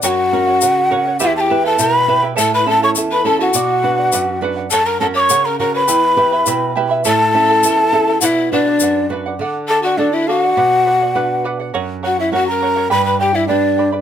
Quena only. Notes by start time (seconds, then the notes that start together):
0.04 F#5 G5
1.23 E5
1.36 G5 A5
1.66 A5
1.81 B5
2.39 A5
2.54 B5
2.69 A5
2.84 C#6
3.12 B5
3.28 A5
3.42 F#5
4.71 A5
4.86 A#5
5.00 A5
5.16 C#6 D6
5.45 A#5
5.60 A#5
5.76 B5
7.07 A5
8.21 F#5
8.25 E5
8.53 D5
9.68 A5
9.84 F#5
9.98 D5
10.14 E5
10.27 F5
10.38 F#5
12.05 F#5
12.20 E5
12.33 F#5
12.47 A#5
12.91 B5
13.05 B5
13.20 G5
13.35 E5
13.48 D5